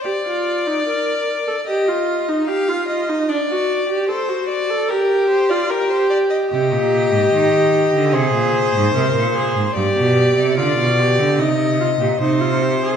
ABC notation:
X:1
M:4/4
L:1/16
Q:1/4=74
K:Cm
V:1 name="Violin"
d8 e4 f2 e2 | d4 c2 d2 B2 c d B c d e | e8 c8 | d4 d4 e4 c4 |]
V:2 name="Viola"
G F2 E B3 =A G F2 E G F2 E | D ^F2 G =A F2 A G3 =F G4 | G8 A4 B2 A2 | G4 F2 G2 E2 F G E F G A |]
V:3 name="Cello" clef=bass
z16 | z16 | C, B,,2 A,, E,3 D, C, B,,2 A,, C, B,,2 A,, | G,, =B,,2 C, D, B,,2 D, C,3 _B,, C,4 |]